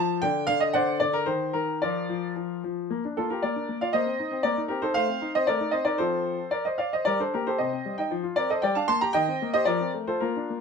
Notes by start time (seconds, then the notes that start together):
Already playing: F3 A5
0.22 D3 G5
0.47 D3 F5
0.60 D#5
0.73 D3 C5 D5 F#5
1.00 D3 D5
1.13 A#4
1.26 D#3 C5
1.53 D#3 A#4
1.82 F3 F4 A#4 D5
2.09 F3
2.36 F3
2.64 F3
2.90 A#3
3.05 D4
3.17 A#3 F4 A4
3.30 F4 G4 A#4
3.42 A#3 A#4 D5
3.56 D4
3.69 A#3
3.81 F4 D5 F5
3.93 A#3 C5 D#5
4.06 C4
4.19 D#4
4.31 C4
4.43 A#3 A#4 D5
4.57 D#4
4.68 C4 G4 A#4
4.82 D#4 A4 C5
4.94 A3 C5 F5
5.09 C4
5.21 D#4
5.35 C4 C5 D#5
5.47 A3 A#4 D5
5.60 D#4
5.71 C4 C5 D#5
5.85 D#4 A#4 D5
5.98 F3 C4 F4 A4 C5
6.51 A#4 D5
6.65 C5 D#5
6.78 D5 F5
6.93 C5 D#5
7.05 G3 A#4 D5
7.20 D4 A4 C5
7.34 A#3 G4 A#4
7.47 G4 A4 C5
7.58 C3 C5 D#5
7.73 C4
7.85 G3
7.98 D#4 D#5 G5
8.11 F3
8.23 F4
8.36 C4 A#4 D5
8.50 A4 C5 D#5
8.62 G3 D5 G5
8.75 D4 F5 A5
8.88 A#3 A5 C6
9.01 G4 G5 A#5
9.13 D#3 D#5 G5
9.28 C4
9.42 A#3
9.54 G4 C5 D#5
9.65 F3 A#4 D5
9.80 C4
9.94 A3
10.07 F4 A4 C5
10.20 A#3 F4 A#4
10.36 D4
10.50 A#3